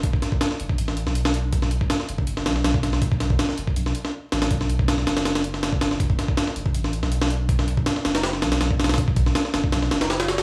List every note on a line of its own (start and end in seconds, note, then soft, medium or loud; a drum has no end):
0.00 0.21 F#1 loud
0.00 kick loud
0.00 closed hi-hat medium
0.13 kick loud
0.22 snare medium
0.22 closed hi-hat medium
0.32 kick loud
0.41 snare loud
0.41 closed hi-hat medium
0.51 snare soft
0.60 0.76 F#1 loud
0.60 closed hi-hat medium
0.69 kick loud
0.78 1.05 A1 medium
0.78 closed hi-hat medium
0.88 snare soft
0.97 closed hi-hat medium
1.07 1.89 B1 loud
1.07 snare soft
1.15 closed hi-hat medium
1.25 snare loud
1.34 closed hi-hat medium
1.53 kick loud
1.53 closed hi-hat medium
1.62 snare medium
1.71 closed hi-hat medium
1.81 kick loud
1.90 snare loud
1.90 closed hi-hat medium
2.00 snare soft
2.09 2.47 F#1 loud
2.09 closed hi-hat medium
2.18 kick medium
2.27 closed hi-hat medium
2.37 snare medium
2.46 2.63 B1 medium
2.46 snare loud
2.46 closed hi-hat medium
2.56 snare soft
2.64 3.38 B1 medium
2.64 snare loud
2.64 closed hi-hat medium
2.74 kick loud
2.83 snare medium
2.83 closed hi-hat medium
2.93 snare medium
3.02 kick loud
3.02 closed hi-hat medium
3.12 kick loud
3.20 snare medium
3.20 closed hi-hat medium
3.30 kick loud
3.39 snare loud
3.39 closed hi-hat medium
3.49 snare soft
3.58 3.75 F#1 loud
3.58 closed hi-hat medium
3.67 kick medium
3.76 3.93 B1 loud
3.76 closed hi-hat medium
3.86 snare soft
3.95 closed hi-hat medium
4.05 snare soft
4.32 4.49 A1 loud
4.32 snare loud
4.32 closed hi-hat medium
4.42 snare loud
4.42 closed hi-hat medium
4.51 5.05 B1 loud
4.51 kick loud
4.51 closed hi-hat medium
4.61 snare medium
4.70 closed hi-hat medium
4.79 kick loud
4.88 snare loud
4.88 closed hi-hat medium
4.98 snare soft
5.07 6.17 F#1 loud
5.07 snare loud
5.07 closed hi-hat medium
5.17 snare loud
5.17 closed hi-hat medium
5.25 snare loud
5.25 closed hi-hat medium
5.35 snare loud
5.35 closed hi-hat medium
5.44 closed hi-hat medium
5.54 snare soft
5.63 snare loud
5.63 closed hi-hat medium
5.72 kick loud
5.81 snare loud
5.81 closed hi-hat medium
5.91 snare medium
6.00 kick loud
6.00 closed hi-hat medium
6.10 kick loud
6.19 snare medium
6.19 closed hi-hat medium
6.28 kick loud
6.37 snare loud
6.37 closed hi-hat medium
6.47 snare soft
6.56 6.73 F#1 loud
6.56 closed hi-hat medium
6.66 kick loud
6.74 7.01 A1 medium
6.74 closed hi-hat medium
6.84 snare soft
6.93 closed hi-hat medium
7.03 7.85 B1 loud
7.03 snare soft
7.12 closed hi-hat medium
7.22 snare loud
7.30 closed hi-hat medium
7.49 kick loud
7.49 closed hi-hat medium
7.59 snare medium
7.68 closed hi-hat medium
7.77 kick loud
7.86 snare loud
7.86 closed hi-hat medium
7.96 snare soft
8.05 8.44 F#1 loud
8.05 snare loud
8.05 closed hi-hat medium
8.15 snare loud
8.15 closed hi-hat medium
8.23 snare loud
8.23 closed hi-hat medium
8.33 snare soft
8.42 8.59 B1 medium
8.42 snare loud
8.42 closed hi-hat medium
8.52 snare loud
8.52 closed hi-hat medium
8.61 9.34 B1 medium
8.61 snare loud
8.61 closed hi-hat medium
8.71 kick loud
8.80 snare medium
8.80 closed hi-hat medium
8.84 snare medium
8.84 closed hi-hat medium
8.89 snare medium
8.89 closed hi-hat medium
8.94 snare medium
8.94 closed hi-hat medium
8.98 kick loud
8.98 closed hi-hat medium
9.08 kick loud
9.16 kick loud
9.16 closed hi-hat medium
9.26 snare soft
9.35 snare loud
9.35 closed hi-hat medium
9.45 snare soft
9.54 9.71 F#1 loud
9.54 snare loud
9.54 closed hi-hat medium
9.64 kick medium
9.72 9.89 B1 loud
9.72 snare loud
9.72 closed hi-hat medium
9.82 snare soft
9.91 10.43 F#1 medium
9.91 snare loud
9.91 closed hi-hat medium
10.01 snare loud
10.01 closed hi-hat medium
10.10 snare loud
10.10 closed hi-hat medium
10.20 snare loud
10.20 closed hi-hat medium
10.28 snare loud
10.28 closed hi-hat medium
10.38 snare loud
10.38 closed hi-hat medium